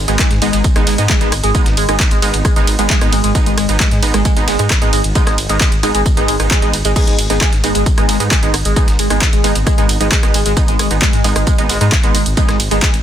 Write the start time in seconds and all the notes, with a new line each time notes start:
0.08 G#1 G#3 B3 D#4, closed hi-hat
0.19 G#3, kick, cross-stick, snare, clap, closed hi-hat, ride, tambourine
0.31 G#2, snare, closed hi-hat
0.42 G#1 G#3 B3 D#4, open hi-hat, ride, tambourine
0.53 G#1 G#3, closed hi-hat
0.64 kick, closed hi-hat, ride, tambourine
0.76 G#1 G#3 B3 D#4, cross-stick, closed hi-hat
0.87 G#1 G#3, snare, open hi-hat, ride, tambourine
0.98 G#2 G#3 B3 D#4, closed hi-hat
1.09 G#3, kick, snare, clap, closed hi-hat, ride, tambourine
1.21 G#1 G#3 B3 D#4, closed hi-hat
1.32 G#1, cross-stick, open hi-hat, ride, tambourine
1.43 G#1 G#3, closed hi-hat
1.55 G#3 B3 D#4, kick, closed hi-hat, ride, tambourine
1.66 G#1, snare, closed hi-hat
1.77 G#1 G#3, open hi-hat, ride, tambourine
1.89 G#1 G#3 B3 D#4, cross-stick, closed hi-hat
2.00 kick, snare, clap, closed hi-hat, ride, tambourine
2.11 G#1 G#3, closed hi-hat
2.22 G#1 G#3 B3 D#4, open hi-hat, ride, tambourine
2.34 G#1, closed hi-hat
2.45 G#3, kick, cross-stick, closed hi-hat, ride, tambourine
2.56 G#1 G#3 B3 D#4, closed hi-hat
2.67 G#1, open hi-hat, ride, tambourine
2.79 G#1 G#3 B3 D#4, closed hi-hat
2.90 G#3, kick, snare, clap, closed hi-hat, ride, tambourine
3.01 G#1 G#3 B3 D#4, cross-stick, closed hi-hat
3.12 G#1 G#3, open hi-hat, ride, tambourine
3.24 G#1 G#3, closed hi-hat
3.35 G#3 B3 D#4, kick, closed hi-hat, ride, tambourine
3.46 G#1 G#3, closed hi-hat
3.57 G#1 G#3, cross-stick, open hi-hat, ride, tambourine
3.69 G#1 G#3 B3 D#4, closed hi-hat
3.80 G#3, kick, snare, clap, closed hi-hat, ride, tambourine
3.91 G#2 G#3, snare, closed hi-hat
4.03 G#1 G#3 B3 D#4, open hi-hat, ride, tambourine
4.14 G#1 G#3, cross-stick, closed hi-hat
4.25 G#3, kick, closed hi-hat, ride, tambourine
4.37 G#1 G#3 B3 D#4, closed hi-hat
4.48 G#1 G#3, snare, open hi-hat, ride, tambourine
4.59 G#2 G#3 B3 D#4, closed hi-hat
4.70 kick, cross-stick, snare, clap, closed hi-hat, ride, tambourine
4.82 G#1 G#3 B3 D#4, closed hi-hat
4.93 G#1 G#3, open hi-hat, ride, tambourine
5.04 G#1, closed hi-hat
5.15 G#3 B3 D#4, kick, closed hi-hat, ride, tambourine
5.27 G#1 G#3, cross-stick, snare, closed hi-hat
5.38 G#1, open hi-hat, ride, tambourine
5.49 G#1 G#3 B3 D#4, closed hi-hat
5.60 G#3, kick, snare, clap, closed hi-hat, ride, tambourine
5.72 G#1, closed hi-hat
5.83 G#1 G#3 B3 D#4, cross-stick, open hi-hat, ride, tambourine
5.95 G#1 G#3, closed hi-hat
6.06 kick, closed hi-hat, ride, tambourine
6.17 G#1 G#3 B3 D#4, closed hi-hat
6.28 G#1 G#3, open hi-hat, ride, tambourine
6.40 G#1 G#3 B3 D#4, cross-stick, closed hi-hat
6.51 G#3, kick, clap, closed hi-hat, ride, tambourine
6.62 G#1 G#3 B3 D#4, closed hi-hat
6.73 G#1, open hi-hat, ride, tambourine
6.85 G#1 G#3, closed hi-hat, tambourine
6.96 G#3 B3 D#4, kick, closed hi-hat, crash, ride, tambourine
7.07 G#1 G#3, closed hi-hat
7.18 G#1, open hi-hat, ride, tambourine
7.30 G#1 G#3 B3 D#4, closed hi-hat
7.41 G#3, kick, cross-stick, snare, clap, closed hi-hat, ride, tambourine
7.52 G#2, snare, closed hi-hat
7.64 G#1 G#3 B3 D#4, open hi-hat, ride, tambourine
7.75 G#1 G#3, closed hi-hat
7.86 kick, closed hi-hat, ride, tambourine
7.98 G#1 G#3 B3 D#4, cross-stick, closed hi-hat
8.09 G#1 G#3, snare, open hi-hat, ride, tambourine
8.20 G#2 G#3 B3 D#4, closed hi-hat
8.31 G#3, kick, snare, clap, closed hi-hat, ride, tambourine
8.43 G#1 G#3 B3 D#4, closed hi-hat
8.54 G#1, cross-stick, open hi-hat, ride, tambourine
8.65 G#1 G#3, closed hi-hat
8.76 G#3 B3 D#4, kick, closed hi-hat, ride, tambourine
8.88 G#1, snare, closed hi-hat
8.99 G#1 G#3, open hi-hat, ride, tambourine
9.10 G#1 G#3 B3 D#4, cross-stick, closed hi-hat
9.21 kick, snare, clap, closed hi-hat, ride, tambourine
9.33 G#1 G#3, closed hi-hat
9.44 G#1 G#3 B3 D#4, open hi-hat, ride, tambourine
9.55 G#1, closed hi-hat
9.66 G#3, kick, cross-stick, closed hi-hat, ride, tambourine
9.78 G#1 G#3 B3 D#4, closed hi-hat
9.89 G#1, open hi-hat, ride, tambourine
10.00 G#1 G#3 B3 D#4, closed hi-hat
10.12 G#3, kick, snare, clap, closed hi-hat, ride, tambourine
10.23 G#1 G#3 B3 D#4, cross-stick, closed hi-hat
10.34 G#1 G#3, open hi-hat, ride, tambourine
10.46 G#1 G#3, closed hi-hat
10.57 G#3 B3 D#4, kick, closed hi-hat, ride, tambourine
10.68 G#1 G#3, closed hi-hat
10.79 G#1 G#3, cross-stick, open hi-hat, ride, tambourine
10.91 G#1 G#3 B3 D#4, closed hi-hat
11.02 G#3, kick, snare, clap, closed hi-hat, ride, tambourine
11.13 G#2 G#3, snare, closed hi-hat
11.24 G#1 G#3 B3 D#4, open hi-hat, ride, tambourine
11.36 G#1 G#3, cross-stick, closed hi-hat
11.47 G#3, kick, closed hi-hat, ride, tambourine
11.58 G#1 G#3 B3 D#4, closed hi-hat
11.69 G#1 G#3, snare, open hi-hat, ride, tambourine
11.81 G#2 G#3 B3 D#4, closed hi-hat
11.92 kick, cross-stick, snare, clap, closed hi-hat, ride, tambourine
12.03 G#1 G#3 B3 D#4, closed hi-hat
12.15 G#1 G#3, open hi-hat, ride, tambourine
12.26 G#1, closed hi-hat
12.37 G#3 B3 D#4, kick, closed hi-hat, ride, tambourine
12.48 G#1 G#3, cross-stick, snare, closed hi-hat
12.60 G#1, open hi-hat, ride, tambourine
12.71 G#1 G#3 B3 D#4, closed hi-hat
12.82 G#3, kick, snare, clap, closed hi-hat, ride, tambourine
12.94 G#1, closed hi-hat